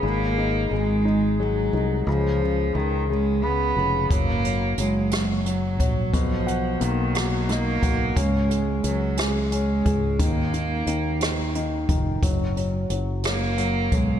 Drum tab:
HH |------|------|xxxxxx|xxxxxx|
SD |------|------|---r--|---rr-|
BD |------|------|o----o|o----o|

HH |xxxxxx|xxxxxx|xxxxxx|
SD |---r--|---r--|---r--|
BD |o----o|o----o|o----o|